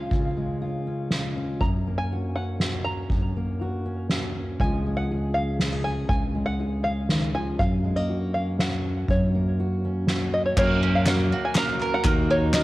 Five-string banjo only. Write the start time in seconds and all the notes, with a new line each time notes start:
Already playing: F5
1.61 A#5
1.98 G#5
2.36 F#5
2.84 A#5
4.61 G#5
4.97 F#5
5.34 F5
5.84 G#5
6.09 G#5
6.46 F#5
6.84 F5
7.35 G#5
7.59 F5
7.96 D#5
8.34 F5
8.60 F#5
9.10 C#5
10.34 D#5
10.46 C#5
10.59 C#5
10.95 F5
11.08 F#5
11.45 G#5
11.58 A#5
11.94 F#5
12.31 C#5
12.54 D#5